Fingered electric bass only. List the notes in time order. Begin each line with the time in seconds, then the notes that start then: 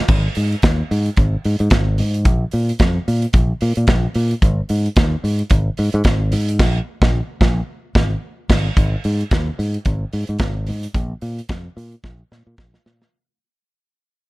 0.09 G#1
0.37 G#2
0.64 D#2
0.91 G#2
1.18 G#1
1.45 G#2
1.60 G#2
1.72 G#1
1.99 G#2
2.26 A#1
2.53 A#2
2.80 F2
3.08 A#2
3.34 A#1
3.62 A#2
3.77 A#2
3.88 A#1
4.15 A#2
4.42 G#1
4.70 G#2
4.97 D#2
5.24 G#2
5.51 G#1
5.79 G#2
5.94 G#2
6.05 G#1
6.33 G#2
6.60 A#1
7.02 A#1
7.41 A#1
7.95 G#1
8.50 G#1
8.77 G#1
9.05 G#2
9.32 D#2
9.59 G#2
9.86 G#1
10.13 G#2
10.29 G#2
10.40 G#1
10.69 G#2
10.95 A#1
11.22 A#2
11.50 F2
11.77 A#2
12.04 A#1
12.32 A#2
12.47 A#2
12.58 A#1
12.86 A#2